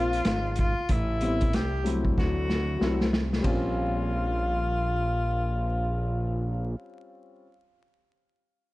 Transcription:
0.00 0.22 A#1 medium
0.00 0.17 F3 medium
0.00 0.17 A#3 medium
0.00 0.18 C4 medium
0.00 0.18 F4 medium
0.00 0.58 F4 loud
0.13 closed hi-hat soft
0.25 0.74 G#1 medium
0.25 snare loud
0.25 closed hi-hat medium
0.56 kick medium
0.56 closed hi-hat medium
0.60 0.93 F4 medium
0.78 0.82 G#1 soft
0.89 1.55 A1 medium
0.89 1.56 E4 medium
0.89 kick loud
0.89 closed hi-hat medium
1.20 1.45 G3 medium
1.20 1.46 B3 medium
1.20 1.46 C4 medium
1.20 1.46 E4 medium
1.20 closed hi-hat soft
1.41 kick medium
1.41 closed hi-hat soft
1.53 2.14 C2 medium
1.53 1.92 G4 medium
1.53 snare medium
1.53 closed hi-hat medium
1.84 2.75 F#3 medium
1.84 2.76 A3 medium
1.84 2.76 C4 medium
1.84 2.77 E4 medium
1.84 closed hi-hat medium
2.05 kick medium
2.18 2.78 D2 medium
2.18 3.09 F#4 medium
2.18 kick medium
2.18 snare soft
2.50 snare medium
2.79 3.41 C2 medium
2.79 3.04 F#3 medium
2.79 3.05 A3 medium
2.79 3.05 C4 medium
2.79 3.06 E4 medium
2.79 snare medium
3.01 snare medium
3.13 snare medium
3.33 snare medium
3.38 7.42 G3 medium
3.38 7.44 C4 medium
3.44 6.76 A#1 medium
3.44 7.46 C#4 medium
3.44 6.76 F4 medium
3.44 kick medium
3.44 ride medium
3.50 7.48 F4 medium

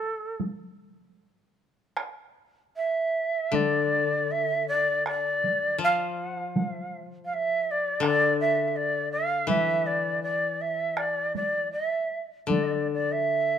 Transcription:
0.00 0.37 A4 medium
0.40 taiko high soft
1.97 taiko rim medium
2.76 3.56 E5 medium
3.52 5.80 D3 medium
3.52 4.32 D5 medium
3.52 taiko high medium
4.31 4.67 E5 medium
4.68 5.04 D5 medium
5.06 5.78 D5 medium
5.06 taiko rim medium
5.44 taiko high soft
5.78 8.01 F3 medium
5.83 6.25 F5 medium
6.25 6.36 F#5 medium
6.36 6.48 F5 medium
6.48 6.60 F#5 medium
6.56 taiko high medium
6.60 7.01 F5 medium
7.25 7.35 F5 medium
7.34 7.72 E5 medium
7.71 8.05 D5 medium
8.00 10.21 D3 medium
8.00 taiko rim medium
8.06 8.38 D5 medium
8.40 8.67 E5 medium
8.67 8.77 E5 medium
8.76 9.11 D5 medium
9.12 9.46 F5 medium
9.47 11.72 E3 medium
9.47 9.88 E5 medium
9.47 taiko high medium
9.86 10.22 D5 medium
10.23 10.62 D5 medium
10.61 10.99 E5 medium
10.97 11.35 D5 medium
10.97 taiko rim medium
11.35 11.70 D5 medium
11.35 taiko high soft
11.72 12.19 E5 medium
12.47 13.59 D3 medium
12.47 12.87 D5 medium
12.47 taiko high soft
12.93 13.13 D5 medium
13.12 13.59 E5 medium

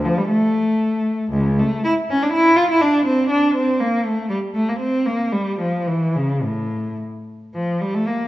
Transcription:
0.05 0.18 F3 medium
0.18 0.30 G3 medium
0.29 1.30 A3 medium
1.32 1.59 C#2 medium
1.59 1.85 A3 medium
1.84 1.92 E4 medium
2.10 2.22 C#4 medium
2.23 2.34 D4 medium
2.33 2.57 E4 medium
2.56 2.69 F4 medium
2.70 2.82 E4 medium
2.81 3.06 D4 medium
3.06 3.30 C4 medium
3.30 3.55 D4 medium
3.55 3.80 C4 medium
3.80 4.05 A#3 medium
4.05 4.30 A3 medium
4.30 4.38 G3 medium
4.54 4.67 A3 medium
4.69 4.81 A#3 medium
4.80 5.05 C4 medium
5.06 5.33 A#3 medium
5.32 5.60 G3 medium
5.60 5.87 F3 medium
5.88 6.16 E3 medium
6.16 6.44 C#3 medium
6.44 6.99 A2 medium
7.55 7.79 F3 medium
7.81 7.94 G3 medium
7.95 8.07 A3 medium
8.07 8.28 A#3 medium

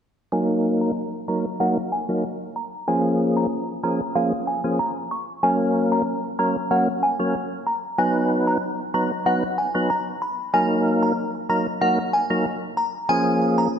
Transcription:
0.32 0.91 F#3 medium
0.32 0.92 A#3 medium
0.32 0.92 D#4 medium
0.32 0.92 A#4 medium
0.32 0.47 G#5 loud
0.81 0.94 A#5 medium
1.28 1.45 F#3 medium
1.28 1.46 A#3 medium
1.28 1.46 D#4 medium
1.28 1.46 A#4 medium
1.28 1.42 A#5 medium
1.60 1.77 F#3 medium
1.60 1.78 A#3 medium
1.60 1.78 D#4 medium
1.60 1.78 A#4 medium
1.60 1.74 F#5 medium
1.92 2.06 G#5 medium
2.09 2.24 F#3 medium
2.09 2.24 A#3 medium
2.09 2.25 D#4 medium
2.09 2.25 A#4 medium
2.56 2.70 A#5 medium
2.87 3.47 F3 medium
2.87 3.47 A#3 medium
2.87 3.47 C#4 medium
2.87 3.47 G#4 medium
2.87 3.02 G#5 loud
3.37 3.49 A#5 medium
3.83 4.01 F3 medium
3.83 4.01 A#3 medium
3.83 4.01 C#4 medium
3.83 4.01 G#4 medium
3.83 3.98 A#5 medium
4.15 4.33 F3 medium
4.15 4.33 A#3 medium
4.15 4.33 C#4 medium
4.15 4.33 G#4 medium
4.15 4.30 F5 medium
4.47 4.62 G#5 medium
4.64 4.80 F3 medium
4.64 4.80 A#3 medium
4.64 4.80 C#4 medium
4.64 4.80 G#4 medium
4.79 4.94 A#5 medium
5.11 5.25 C#6 medium
5.43 6.02 F#3 medium
5.43 6.02 A#3 medium
5.43 6.02 C#4 medium
5.43 6.02 A#4 medium
5.43 5.57 G#5 loud
5.92 6.05 A#5 medium
6.39 6.56 F#3 medium
6.39 6.56 A#3 medium
6.39 6.56 C#4 medium
6.39 6.56 A#4 medium
6.39 6.53 A#5 medium
6.71 6.88 F#3 medium
6.71 6.88 A#3 medium
6.71 6.88 C#4 medium
6.71 6.88 A#4 medium
6.71 6.85 F#5 medium
7.03 7.17 G#5 medium
7.19 7.35 F#3 medium
7.19 7.35 A#3 medium
7.19 7.35 C#4 medium
7.19 7.35 A#4 medium
7.67 7.81 A#5 medium
7.98 8.57 F#3 medium
7.98 8.57 B3 medium
7.98 8.58 D#4 medium
7.98 8.58 B4 medium
7.98 8.13 G#5 loud
8.47 8.60 A#5 medium
8.94 9.11 F#3 medium
8.94 9.12 B3 medium
8.94 9.12 D#4 medium
8.94 9.12 B4 medium
8.94 9.08 A#5 medium
9.26 9.43 F#3 medium
9.26 9.43 B3 medium
9.26 9.44 D#4 medium
9.26 9.44 B4 medium
9.26 9.40 F#5 medium
9.58 9.72 G#5 medium
9.75 9.90 F#3 medium
9.75 9.90 B3 medium
9.75 9.90 D#4 medium
9.75 9.91 B4 medium
9.90 10.04 A#5 medium
10.22 10.36 B5 medium
10.53 11.13 F#3 medium
10.53 11.13 A#3 medium
10.53 11.13 D#4 medium
10.53 11.13 A#4 medium
10.53 10.68 G#5 loud
11.03 11.15 A#5 medium
11.49 11.67 F#3 medium
11.49 11.67 A#3 medium
11.49 11.67 D#4 medium
11.49 11.67 A#4 medium
11.49 11.64 A#5 medium
11.81 11.99 F#3 medium
11.81 11.99 A#3 medium
11.81 11.99 D#4 medium
11.81 11.99 A#4 medium
11.81 11.96 F#5 medium
12.13 12.28 G#5 medium
12.30 12.46 F#3 medium
12.30 12.46 A#3 medium
12.30 12.46 D#4 medium
12.30 12.46 A#4 medium
12.77 12.91 A#5 medium
13.09 13.68 F3 medium
13.09 13.68 A#3 medium
13.09 13.68 C#4 medium
13.09 13.68 G#4 medium
13.09 13.23 G#5 loud
13.58 13.71 A#5 medium

